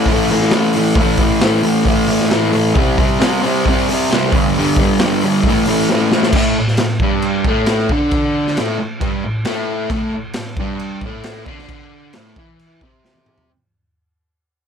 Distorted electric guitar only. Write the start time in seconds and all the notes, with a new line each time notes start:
Already playing: E3 A3
0.09 A2 E3
0.13 A3
0.31 E3 A3
0.52 A2 E3
0.56 A3
0.75 E3 A3
0.97 A2 E3
1.02 A3
1.19 E3 A3
1.41 A2 E3
1.46 A3
1.63 A2 E3 A3
1.85 A2 E3 A3
2.08 E3 A3
2.30 A2 E3 A3
2.53 E3 A3
2.75 C3 G3 C4
2.99 G3 C4
3.21 C3 G3 C4
3.43 C3 G3 C4
3.66 C3 G3 C4
3.89 G3 C4
4.11 C3 G3
4.15 C4
4.33 G2 D3 G3
4.55 G2 D3 G3
4.79 D3 G3
5.01 G2 D3
5.05 G3
5.24 G2 D3 G3
5.46 A2 E3 A3
5.68 E3 A3
5.90 A2 E3 A3
6.12 A3
6.17 E3
6.36 A2 A3
6.59 A2
6.80 A2
7.02 G2 G3
7.48 A2 A3
7.92 D3 D4
8.59 A2 A3
8.80 A2
9.01 G2 G3
9.25 A2
9.46 A2 A3
9.91 A2 A3
10.14 A2
10.38 A2
10.60 G2 G3
11.04 A2 A3
11.48 D3 D4
12.16 A2 A3
12.38 E3 E4
12.83 C3 C4